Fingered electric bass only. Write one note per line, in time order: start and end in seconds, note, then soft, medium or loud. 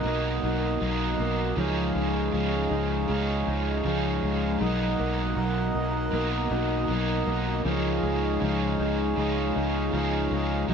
0.05 0.39 B1 loud
0.43 0.77 B1 loud
0.81 1.15 B1 medium
1.19 1.53 B1 loud
1.57 1.91 C#2 loud
1.95 2.29 C#2 medium
2.34 2.67 C#2 loud
2.71 3.05 C#2 loud
3.09 3.43 C#2 loud
3.47 3.81 C#2 loud
3.85 4.19 C#2 loud
4.23 4.57 C#2 loud
4.61 4.94 B1 loud
4.99 5.33 B1 medium
5.36 5.70 B1 loud
5.75 6.09 B1 loud
6.13 6.47 B1 loud
6.51 6.84 B1 loud
6.89 7.22 B1 loud
7.27 7.61 B1 loud
7.65 7.99 C#2 loud
8.03 8.37 C#2 medium
8.42 8.75 C#2 loud
8.80 9.13 C#2 loud
9.17 9.51 C#2 loud
9.56 9.89 C#2 loud
9.93 10.27 C#2 loud
10.31 10.64 C#2 loud
10.69 10.74 B1 loud